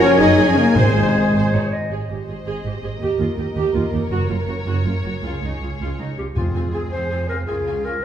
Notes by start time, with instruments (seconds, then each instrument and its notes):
Already playing: viola section A#4, clarinet C#5, oboe G#5, violin section G#5
0.00 double bass section F#1, cello section F3, french horn section C#4, violin section G#4 C#5, flute section C#5
0.18 double bass section F#1, cello section F#3, french horn section D#4, viola section G#4, violin section C#5 D#5, flute section D#5
0.38 double bass section F#1, violin section F#4
0.47 cello section F3, french horn section C#4, flute section C#5, violin section C#5
0.56 cello section C#3, french horn section A#3, flute section A#4, violin section A#4
0.75 double bass section G#1, timpani G#2, cello section C3, french horn section G#3, flute section G#4, violin section G#4 C5, clarinet C5, viola section C5, oboe G#5
0.96 double bass section G#1, violin section D#4
1.15 double bass section G#1, violin section G#4
1.34 double bass section G#1, violin section C5, clarinet C5
1.53 double bass section G#1, violin section D#4, clarinet C#5
1.73 clarinet D#5
1.91 double bass section G#1, cello section G#2, viola section G#4, violin section C5 D#5
2.09 double bass section G#1, cello section G#2, viola section G4
2.28 double bass section G#1, cello section G#2, viola section G#4
2.46 double bass section G#1, cello section G#2, viola section G#4
2.64 double bass section G#1, cello section G#2, viola section G4
2.82 double bass section G#1, cello section G#2, viola section G#4
3.01 double bass section D#2, cello section D#2, viola section G4, violin section A#4
3.19 cello section D#2, double bass section D#2, viola section F4
3.37 cello section D#2, double bass section D#2, viola section G4
3.55 cello section D#2, double bass section D#2, viola section G4
3.74 cello section D#2, double bass section D#2, viola section F4
3.92 cello section D#2, double bass section D#2, viola section G4
4.10 double bass section F#1, cello section F#2, viola section F#4, violin section C#5
4.29 double bass section F#1, cello section F#2, viola section F4
4.47 double bass section F#1, cello section F#2, viola section F#4
4.66 double bass section F#1, cello section F#2, viola section F#4
4.85 double bass section F#1, cello section F#2, viola section F4
5.03 double bass section F#1, cello section F#2, viola section F#4
5.23 cello section C#2, double bass section C#2, viola section F4, violin section G#4
5.42 double bass section C#2, cello section C#2, viola section D#4
5.61 double bass section C#2, cello section C#2, viola section F4
5.80 cello section C#2, double bass section C#2, viola section F4
5.99 cello section C#2, double bass section C#2, viola section D#4
6.18 cello section C#2, double bass section C#2, viola section F4, clarinet G4
6.36 timpani F2, double bass section F2, viola section C4, clarinet F4, violin section F4 G#5, cello section G#4
6.54 viola section C4, violin section F4 G#5
6.73 viola section C4, violin section F4 G#5, clarinet G#4
6.91 double bass section F2, viola section C4, violin section F4 G#5, clarinet C5
7.11 viola section C4, violin section F4 G#5
7.29 viola section C4, violin section F4 G#5, clarinet A#4
7.46 double bass section C#2, viola section C#4, violin section F4 G#5, cello section F4, clarinet G#4
7.66 viola section C#4, violin section F4 G#5
7.84 viola section C#4, violin section F4 G#5, clarinet A#4